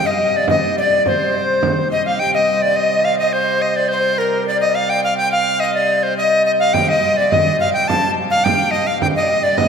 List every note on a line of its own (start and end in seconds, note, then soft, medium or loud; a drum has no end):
0.00 2.19 C3 medium
0.00 2.19 G3 medium
0.05 0.13 D#5 medium
0.05 0.38 D#5 medium
0.11 0.20 F5 medium
0.19 0.48 D#5 medium
0.19 frame drum soft
0.36 0.49 D5 medium
0.48 0.55 D#5 medium
0.48 0.76 D#5 medium
0.48 frame drum medium
0.77 1.09 D5 medium
0.77 1.05 D5 medium
0.77 frame drum soft
1.06 1.88 C5 medium
1.06 1.91 C5 medium
1.06 frame drum medium
1.63 frame drum medium
1.91 2.08 D#5 medium
1.91 2.05 D#5 medium
2.06 2.21 F5 medium
2.06 2.20 F5 medium
2.19 6.73 C3 medium
2.19 6.73 G3 medium
2.19 2.33 G5 medium
2.19 2.36 G5 medium
2.34 2.64 D#5 medium
2.34 2.65 D#5 medium
2.62 2.78 D5 medium
2.62 2.79 D5 medium
2.76 3.06 D#5 medium
3.05 3.18 F5 medium
3.05 3.19 F5 medium
3.18 3.34 D#5 medium
3.18 3.33 D#5 medium
3.33 3.63 C5 medium
3.33 3.87 C5 medium
3.62 3.78 D#5 medium
3.76 3.90 D5 medium
3.89 4.20 C5 medium
3.89 3.98 C5 medium
4.18 4.46 A#4 medium
4.47 4.60 D5 medium
4.47 4.78 D5 medium
4.61 4.76 D#5 medium
4.75 4.91 F5 medium
4.75 5.05 F5 medium
4.89 5.03 G5 medium
5.04 5.17 F5 medium
5.04 5.12 F5 medium
5.17 5.31 G5 medium
5.21 5.35 G5 medium
5.32 5.61 F5 medium
5.60 5.74 D#5 medium
5.60 5.91 D#5 medium
5.74 6.05 D5 medium
6.03 6.17 C5 medium
6.17 6.44 D#5 medium
6.17 6.62 D#5 medium
6.46 6.52 D#5 medium
6.59 6.75 F5 medium
6.74 9.68 C3 medium
6.74 9.68 G3 medium
6.74 6.90 G5 loud
6.74 6.93 G5 medium
6.74 frame drum medium
6.89 7.18 D#5 medium
6.89 7.19 D#5 medium
7.04 frame drum soft
7.17 7.33 D5 medium
7.17 7.35 D5 medium
7.31 7.59 D#5 medium
7.31 7.64 D#5 medium
7.31 frame drum medium
7.60 7.73 F5 medium
7.60 7.77 F5 medium
7.60 frame drum soft
7.73 7.89 G5 medium
7.73 7.88 G5 medium
7.88 8.11 A5 loud
7.88 8.15 A5 medium
7.88 frame drum medium
8.17 frame drum soft
8.30 8.46 F5 loud
8.30 8.48 F5 medium
8.44 8.72 G5 loud
8.44 8.73 G5 medium
8.44 frame drum medium
8.71 8.88 D#5 medium
8.71 8.87 D#5 medium
8.71 frame drum soft
8.87 9.01 F5 medium
8.87 9.04 F5 medium
9.01 9.07 G5 loud
9.01 9.16 G5 medium
9.01 frame drum medium
9.16 9.45 D#5 medium
9.16 9.24 D#5 medium
9.23 9.32 D5 medium
9.30 9.43 D#5 medium
9.43 9.59 D5 medium
9.43 9.57 D5 medium
9.58 9.68 D#5 medium
9.58 frame drum medium